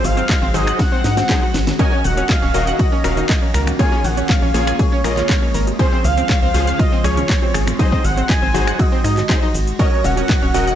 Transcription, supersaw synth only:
0.00 0.51 F#3 loud
0.00 0.51 D#4 loud
0.00 0.51 G#4 medium
0.00 0.51 C5 loud
0.54 1.02 F#3 medium
0.54 1.02 D#4 medium
0.54 1.02 G#4 medium
0.54 1.02 C5 medium
1.29 1.42 F#3 loud
1.29 1.42 D#4 medium
1.29 1.42 G#4 medium
1.29 1.42 C5 loud
1.79 2.51 C#4 loud
1.79 2.51 F#4 medium
1.79 2.51 A#4 medium
1.79 2.51 D#5 loud
2.54 3.02 C#4 medium
2.54 3.02 F#4 medium
2.54 3.02 A#4 medium
2.54 3.02 D#5 loud
3.04 3.76 C#4 medium
3.04 3.76 F#4 medium
3.04 3.76 A#4 medium
3.04 3.76 F5 medium
3.79 4.51 A#3 loud
3.79 4.51 F4 medium
3.79 4.51 G#4 loud
3.79 4.51 C#5 loud
4.54 5.02 A#3 medium
4.54 5.02 F4 medium
4.54 5.02 G#4 medium
4.54 5.02 C#5 medium
5.04 5.76 A#3 medium
5.04 5.76 F4 medium
5.04 5.76 G#4 medium
5.04 5.76 D#5 medium
5.79 6.51 F3 loud
5.79 6.51 C#4 medium
5.79 6.51 G#4 medium
5.79 6.51 C5 loud
6.54 7.02 F3 medium
6.54 7.02 C#4 medium
6.54 7.02 G#4 medium
6.54 7.02 C5 medium
7.04 7.76 F3 medium
7.04 7.76 C#4 medium
7.04 7.76 G#4 medium
7.04 7.76 C#5 medium
7.79 8.51 F#3 loud
7.79 8.51 D#4 medium
7.79 8.51 G#4 medium
7.79 8.51 C5 loud
8.54 9.02 F#3 medium
8.54 9.02 D#4 medium
8.54 9.02 G#4 medium
8.54 9.02 C5 loud
9.29 9.42 F#3 loud
9.29 9.42 D#4 medium
9.29 9.42 G#4 medium
9.29 9.42 C5 loud
9.79 10.51 C#4 loud
9.79 10.51 F#4 medium
9.79 10.51 A#4 medium
9.79 10.51 D#5 loud
10.54 10.75 C#4 medium
10.54 10.75 F#4 medium
10.54 10.75 A#4 medium
10.54 10.75 D#5 loud

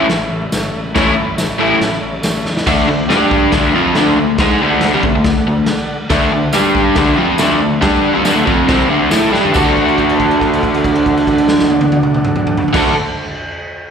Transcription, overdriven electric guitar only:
0.95 1.13 A2 loud
0.95 1.13 E3 loud
0.95 1.13 A3 loud
0.95 1.13 C#4 loud
0.95 1.14 E4 loud
1.59 1.77 A2 medium
1.59 1.77 E3 loud
1.59 1.77 A3 loud
1.59 1.78 C#4 loud
1.59 1.78 E4 loud
2.67 2.87 D3 medium
2.67 2.87 A3 loud
2.67 2.88 D4 loud
2.88 3.06 D3 medium
2.88 3.09 A3 medium
3.09 3.52 G3 medium
3.09 3.52 D4 medium
3.09 3.52 G4 loud
3.52 3.74 D3 loud
3.52 3.74 A3 loud
3.52 3.75 D4 loud
3.75 3.95 F3 medium
3.75 3.96 C4 medium
3.75 3.96 F4 loud
3.96 4.17 D3 medium
3.96 4.17 A3 loud
3.96 4.18 D4 loud
4.18 4.35 D3 medium
4.18 4.35 A3 medium
4.40 4.60 G#3 medium
4.40 4.60 D#4 loud
4.40 4.61 G#4 loud
4.61 4.92 D3 loud
4.61 4.93 A3 loud
4.61 4.93 D4 loud
4.93 5.03 C3 loud
4.93 5.03 G3 loud
5.04 5.14 D3 medium
5.04 5.14 A3 medium
5.15 5.32 D3 medium
5.15 5.32 A3 medium
5.47 5.64 D3 medium
5.47 5.64 A3 medium
6.10 6.31 D3 loud
6.10 6.31 A3 loud
6.10 6.32 D4 loud
6.32 6.49 D3 medium
6.32 6.49 A3 medium
6.54 6.96 G3 medium
6.54 6.96 D4 medium
6.54 6.96 G4 loud
6.98 7.17 D3 loud
6.98 7.18 A3 loud
6.98 7.18 D4 loud
7.18 7.39 F3 loud
7.18 7.39 C4 medium
7.18 7.39 F4 medium
7.39 7.59 D3 medium
7.39 7.60 A3 loud
7.39 7.61 D4 medium
7.61 7.78 D3 medium
7.61 7.78 A3 medium
7.81 8.13 G3 medium
7.81 8.13 D4 loud
7.81 8.14 G4 loud
8.13 8.24 F3 loud
8.13 8.24 C4 loud
8.24 8.35 G3 medium
8.24 8.35 D4 loud
8.34 8.45 D3 medium
8.34 8.46 A3 loud
8.45 8.67 F3 medium
8.45 8.67 C4 loud
8.45 8.68 F4 medium
8.68 8.89 C3 loud
8.68 8.89 G3 loud
8.68 8.89 C4 loud
8.89 9.10 D3 medium
8.89 9.09 A3 medium
8.89 9.11 D4 loud
9.11 9.32 A3 medium
9.11 9.32 E4 medium
9.11 9.32 A4 loud
9.32 9.52 G3 medium
9.32 9.53 D4 medium
9.32 9.54 G4 loud
9.53 12.72 D3 loud
9.53 12.75 D4 loud
9.53 12.75 F#4 loud
9.53 12.77 A4 loud
12.73 12.92 D3 medium
12.73 12.93 D4 loud
12.73 12.94 F#4 loud
12.77 12.94 A4 loud

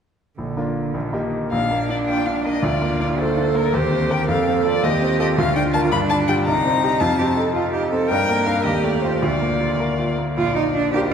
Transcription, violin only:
1.52 1.87 F5 medium
1.90 1.98 D5 medium
2.08 2.27 G5 medium
2.26 2.44 F5 medium
2.45 2.65 D#5 medium
2.64 3.00 D5 medium
3.01 3.08 D5 medium
3.19 3.57 C5 medium
3.56 3.76 A#4 medium
3.74 4.13 C5 medium
4.11 4.28 G5 medium
4.29 4.65 F5 medium
4.66 4.85 D5 medium
4.84 5.19 D#5 medium
5.20 5.27 D#5 medium
5.38 5.55 F5 medium
5.56 5.63 G5 medium
5.74 5.81 A5 medium
5.92 5.99 B5 medium
6.09 6.17 A5 medium
6.28 6.35 G5 medium
6.45 7.02 A#5 medium
7.00 7.37 A5 medium
8.09 8.44 G5 medium
8.46 8.65 F5 medium
8.64 8.85 D#5 medium
8.83 9.03 D5 medium
9.02 9.20 C5 medium
9.21 10.16 D5 medium
10.38 10.90 D5 medium
10.94 11.13 C5 soft

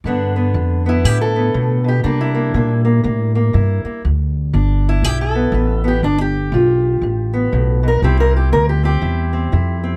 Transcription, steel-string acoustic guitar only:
0.06 0.51 G2 medium
0.06 2.04 D3 soft
0.06 0.35 B3 medium
0.06 1.05 D4 soft
0.36 0.85 B3 soft
0.54 1.00 G2 medium
0.86 1.35 B3 soft
0.86 1.55 E4 medium
1.05 1.50 G2 medium
1.05 1.21 G4 medium
1.21 1.88 A4 medium
1.36 2.02 B3 soft
1.54 1.84 A2 medium
1.84 2.03 B2 medium
1.88 2.03 G4 medium
2.03 2.50 C3 medium
2.03 5.24 G3 soft
2.03 2.33 A#3 soft
2.03 2.70 D4 medium
2.21 3.53 E4 medium
2.35 2.54 A#3 soft
2.55 3.00 C3 medium
2.55 2.83 A#3 soft
2.85 3.03 A#3 medium
3.04 3.49 C3 medium
3.04 3.34 A#3 soft
3.35 3.84 A#3 soft
3.53 3.99 C3 medium
3.53 4.01 E4 soft
3.85 4.02 A#3 soft
4.05 4.50 G2 medium
4.53 4.99 G2 medium
4.53 5.04 D4 medium
4.89 5.54 E4 medium
5.04 5.49 G2 medium
5.04 5.20 G4 medium
5.21 5.87 A4 medium
5.35 5.53 B3 soft
5.54 5.99 G2 medium
5.54 5.83 B3 soft
5.84 6.01 B3 soft
5.84 6.04 G4 medium
6.04 6.49 G2 medium
6.04 6.20 D4 medium
6.21 7.70 G4 medium
6.53 6.99 G2 medium
6.53 8.01 F4 soft
7.03 7.49 G2 medium
7.34 8.01 B3 soft
7.52 7.83 A2 medium
7.83 8.02 B2 medium
7.88 8.03 A#4 medium
8.03 8.49 C3 medium
8.03 9.96 G3 medium
8.03 8.83 C4 medium
8.03 9.01 E4 soft
8.03 8.20 G4 medium
8.20 8.36 A#4 medium
8.36 8.52 G4 medium
8.52 8.98 C3 medium
8.52 8.69 A#4 loud
8.69 8.84 G4 medium
8.83 9.32 C4 soft
8.83 9.85 G4 medium
9.01 9.48 C3 medium
9.01 9.51 E4 soft
9.33 9.82 C4 soft
9.52 9.96 C3 medium
9.52 9.96 E4 soft
9.84 9.96 C4 soft

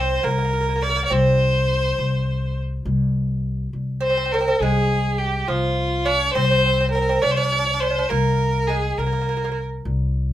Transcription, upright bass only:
0.00 0.20 C2 loud
0.24 1.07 C2 medium
1.11 1.94 C2 loud
1.98 2.82 C2 medium
2.85 3.69 C2 medium
3.73 4.56 C2 medium
4.60 5.44 C2 medium
5.49 6.32 C2 medium
6.36 7.19 C2 medium
7.23 8.06 C2 medium
8.11 8.94 C2 medium
8.98 9.81 C2 medium
9.85 10.33 C2 medium

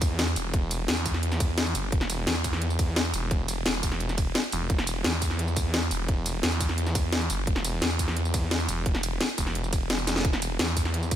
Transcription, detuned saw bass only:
0.00 0.35 E2 loud
0.36 0.87 E1 loud
0.88 1.74 E2 loud
1.75 1.91 F#1 loud
1.92 2.08 E1 loud
2.10 2.26 E1 loud
2.27 3.12 E2 loud
3.14 3.64 E1 loud
3.66 3.82 E1 loud
3.83 4.34 E1 loud
4.52 4.68 E1 loud
4.70 4.86 E1 loud
4.87 5.03 E1 loud
5.04 5.90 E2 loud
5.91 6.42 E1 loud
6.43 7.28 E2 loud
7.30 7.46 F#1 loud
7.47 7.63 E1 loud
7.64 7.80 E1 loud
7.82 8.67 E2 loud
8.69 9.19 E1 loud
9.38 10.23 E1 loud
10.25 10.41 E1 loud
10.42 10.58 E1 loud
10.59 11.16 E2 loud

